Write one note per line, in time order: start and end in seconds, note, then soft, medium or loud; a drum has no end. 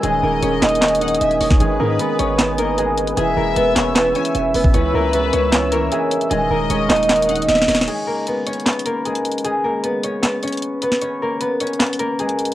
0.00 0.22 D#1 loud
0.00 0.21 D#3 medium
0.00 1.60 G#3 medium
0.00 0.24 A#3 medium
0.00 0.43 C#4 medium
0.00 1.60 G#4 medium
0.00 0.23 A#4 medium
0.00 1.59 A#4 medium
0.00 0.43 C#5 medium
0.00 0.97 D#5 loud
0.00 3.14 D#5 medium
0.00 7.84 G#5 medium
0.00 3.14 D#6 medium
0.00 closed hi-hat medium
0.23 0.42 D#1 loud
0.23 0.81 D#3 medium
0.23 1.80 A#3 medium
0.23 1.79 A#4 medium
0.43 0.61 D#1 loud
0.43 1.41 G#3 medium
0.43 0.83 C#4 medium
0.43 0.82 C#5 medium
0.43 closed hi-hat medium
0.62 1.19 D#1 loud
0.62 1.39 A#3 loud
0.62 1.02 D#4 medium
0.62 1.01 D#5 medium
0.62 snare medium
0.62 clap medium
0.62 closed hi-hat soft
0.69 closed hi-hat medium
0.75 closed hi-hat medium
0.82 1.00 D#3 medium
0.82 1.41 C#4 medium
0.82 1.40 C#5 medium
0.82 snare loud
0.82 clap medium
0.82 closed hi-hat medium
0.88 closed hi-hat medium
0.95 closed hi-hat medium
1.01 1.58 D#3 medium
1.01 3.73 D#4 medium
1.01 2.80 D#5 medium
1.01 1.20 F#5 medium
1.01 closed hi-hat medium
1.08 closed hi-hat medium
1.15 closed hi-hat medium
1.21 1.40 D#1 loud
1.21 1.60 D#5 medium
1.21 1.40 E5 medium
1.21 closed hi-hat medium
1.31 closed hi-hat soft
1.41 1.59 D#1 loud
1.41 1.60 A#3 medium
1.41 2.20 C#4 medium
1.41 2.19 C#5 medium
1.41 1.59 D#5 medium
1.41 open hi-hat medium
1.50 kick loud
1.50 snare medium
1.60 1.79 G#1 loud
1.60 1.79 D#3 medium
1.60 2.78 G#3 medium
1.60 2.78 G#4 medium
1.60 2.54 B4 loud
1.60 4.71 B4 medium
1.60 closed hi-hat medium
1.80 1.99 G#2 loud
1.80 2.37 D#3 medium
1.80 2.06 A#3 medium
1.80 2.06 A#4 medium
1.99 2.98 G#3 medium
1.99 2.39 B3 medium
1.99 2.38 B4 medium
1.99 closed hi-hat medium
2.19 3.13 G#1 loud
2.19 2.96 B3 medium
2.19 3.77 C#4 medium
2.19 3.76 C#5 medium
2.19 closed hi-hat medium
2.38 2.57 D#3 medium
2.38 2.64 B3 medium
2.38 2.64 B4 loud
2.38 snare loud
2.38 clap medium
2.38 closed hi-hat medium
2.58 3.17 D#3 medium
2.58 3.37 A#3 medium
2.58 3.37 A#4 medium
2.58 2.77 D#5 medium
2.58 closed hi-hat medium
2.78 3.17 G#3 medium
2.78 3.17 G#4 medium
2.78 3.17 D#5 loud
2.78 closed hi-hat medium
2.97 3.17 B3 medium
2.97 closed hi-hat medium
3.07 closed hi-hat soft
3.17 3.36 E1 loud
3.17 3.35 E3 medium
3.17 4.79 G#3 medium
3.17 5.44 G#4 loud
3.17 4.11 E5 loud
3.17 6.28 E5 medium
3.17 4.72 E6 medium
3.17 closed hi-hat medium
3.37 3.56 E1 loud
3.37 3.94 E3 medium
3.37 3.62 A#3 medium
3.37 3.62 A#4 medium
3.56 3.75 E1 loud
3.56 4.54 G#3 medium
3.56 3.95 B3 medium
3.56 3.95 B4 medium
3.56 closed hi-hat medium
3.75 4.14 E1 loud
3.75 4.53 B3 medium
3.75 4.16 C#4 medium
3.75 4.15 C#5 medium
3.75 snare loud
3.75 clap medium
3.75 closed hi-hat medium
3.95 4.13 E3 medium
3.95 4.55 B3 medium
3.95 4.54 B4 medium
3.95 snare loud
3.95 clap medium
3.95 closed hi-hat medium
4.15 4.72 E3 medium
4.15 4.74 C#4 medium
4.15 4.74 C#5 medium
4.15 4.34 G#5 medium
4.15 closed hi-hat soft
4.25 closed hi-hat medium
4.35 4.54 E1 loud
4.35 4.74 E5 loud
4.35 closed hi-hat medium
4.54 4.73 E1 loud
4.54 4.74 B3 medium
4.54 5.01 B3 medium
4.54 5.01 B4 medium
4.54 open hi-hat medium
4.64 kick loud
4.74 4.93 C#2 loud
4.74 4.92 E3 medium
4.74 5.34 C#4 medium
4.74 5.68 B4 loud
4.74 6.29 C#5 medium
4.74 5.33 C#5 medium
4.74 6.29 E6 medium
4.74 closed hi-hat medium
4.94 5.31 C#2 loud
4.94 5.51 E3 medium
4.94 5.19 A#3 medium
4.94 5.19 A#4 medium
5.13 6.11 G#3 medium
5.13 5.53 B3 medium
5.13 5.52 B4 medium
5.13 closed hi-hat medium
5.33 5.89 C#2 loud
5.33 6.10 C#4 loud
5.33 6.71 C#4 medium
5.33 6.70 C#5 medium
5.33 closed hi-hat medium
5.52 5.71 E3 medium
5.52 5.78 B3 medium
5.52 5.78 B4 medium
5.52 snare loud
5.52 clap medium
5.52 closed hi-hat medium
5.72 6.31 E3 medium
5.72 6.51 A#3 medium
5.72 6.50 A#4 medium
5.72 5.91 C#5 medium
5.72 closed hi-hat medium
5.92 6.30 G#3 medium
5.92 6.30 G#4 medium
5.92 6.31 E5 loud
5.92 closed hi-hat medium
6.11 6.31 C#4 medium
6.11 closed hi-hat medium
6.21 closed hi-hat soft
6.30 6.50 D#1 loud
6.30 6.49 D#3 medium
6.30 7.87 G#3 medium
6.30 7.87 G#4 loud
6.30 7.86 A#4 medium
6.30 7.25 D#5 loud
6.30 7.86 D#5 medium
6.30 7.86 D#6 medium
6.30 closed hi-hat medium
6.50 6.69 D#1 loud
6.50 7.08 D#3 medium
6.50 8.08 A#3 medium
6.50 8.07 A#4 medium
6.70 6.89 D#1 loud
6.70 7.68 G#3 medium
6.70 7.10 C#4 medium
6.70 7.09 C#5 medium
6.70 closed hi-hat medium
6.90 7.46 D#1 loud
6.90 7.67 A#3 loud
6.90 7.29 D#4 medium
6.90 7.28 D#5 medium
6.90 snare loud
6.90 clap medium
6.90 closed hi-hat soft
6.96 closed hi-hat medium
7.03 closed hi-hat medium
7.09 7.28 D#3 medium
7.09 7.68 C#4 medium
7.09 7.68 C#5 medium
7.09 snare loud
7.09 clap medium
7.09 closed hi-hat medium
7.16 closed hi-hat medium
7.22 closed hi-hat medium
7.29 7.88 D#3 medium
7.29 10.00 D#4 medium
7.29 9.07 D#5 medium
7.29 7.48 F#5 medium
7.29 closed hi-hat medium
7.35 closed hi-hat medium
7.42 closed hi-hat medium
7.48 7.67 D#1 loud
7.48 7.88 D#5 loud
7.48 7.67 E5 medium
7.48 snare medium
7.48 closed hi-hat medium
7.55 snare medium
7.55 closed hi-hat soft
7.62 snare medium
7.68 7.87 D#1 loud
7.68 7.88 A#3 medium
7.68 8.47 C#4 medium
7.68 8.46 C#5 medium
7.68 7.87 D#5 medium
7.68 snare medium
7.68 open hi-hat medium
7.75 snare loud
7.81 snare loud
7.88 9.05 G#3 medium
7.88 9.05 G#4 medium
7.88 closed hi-hat medium
7.88 crash medium
8.07 8.33 A#3 medium
8.07 8.33 A#4 medium
8.27 8.66 B3 medium
8.27 8.66 B4 medium
8.27 closed hi-hat medium
8.47 10.04 C#4 medium
8.47 10.04 C#5 medium
8.47 closed hi-hat medium
8.53 closed hi-hat medium
8.60 closed hi-hat soft
8.66 8.92 B3 medium
8.66 8.92 B4 medium
8.66 snare loud
8.66 clap medium
8.66 closed hi-hat soft
8.73 closed hi-hat medium
8.79 closed hi-hat medium
8.86 9.65 A#3 medium
8.86 9.64 A#4 medium
8.86 closed hi-hat medium
9.05 9.44 G#3 medium
9.05 9.44 G#4 medium
9.05 closed hi-hat medium
9.15 closed hi-hat medium
9.25 closed hi-hat medium
9.32 closed hi-hat medium
9.38 closed hi-hat medium
9.44 11.06 G#3 medium
9.44 11.72 G#4 medium
9.44 closed hi-hat medium
9.64 9.89 A#3 medium
9.64 9.89 A#4 medium
9.84 10.23 B3 medium
9.84 10.22 B4 medium
9.84 closed hi-hat medium
10.03 10.43 C#4 medium
10.03 10.43 C#5 medium
10.03 closed hi-hat medium
10.22 10.83 B3 medium
10.22 10.82 B4 medium
10.22 snare loud
10.22 clap medium
10.22 closed hi-hat medium
10.43 11.02 C#4 medium
10.43 11.01 C#5 medium
10.43 closed hi-hat medium
10.48 closed hi-hat medium
10.52 closed hi-hat medium
10.57 closed hi-hat medium
10.62 closed hi-hat medium
10.82 11.28 B3 medium
10.82 11.28 B4 medium
10.82 closed hi-hat medium
10.92 snare medium
11.01 11.61 C#4 medium
11.01 11.60 C#5 medium
11.01 closed hi-hat medium
11.22 11.47 A#3 medium
11.22 11.47 A#4 medium
11.41 11.80 B3 medium
11.41 11.79 B4 medium
11.41 closed hi-hat medium
11.60 12.54 C#4 medium
11.60 12.54 C#5 medium
11.60 closed hi-hat medium
11.67 closed hi-hat medium
11.73 closed hi-hat soft
11.80 12.05 B3 medium
11.80 12.05 B4 medium
11.80 snare loud
11.80 clap medium
11.80 closed hi-hat soft
11.86 closed hi-hat medium
11.93 closed hi-hat medium
11.99 12.54 A#3 medium
11.99 12.54 A#4 medium
11.99 closed hi-hat medium
12.19 12.54 G#3 medium
12.19 12.54 G#4 medium
12.19 closed hi-hat medium
12.29 closed hi-hat medium
12.39 closed hi-hat medium
12.45 closed hi-hat medium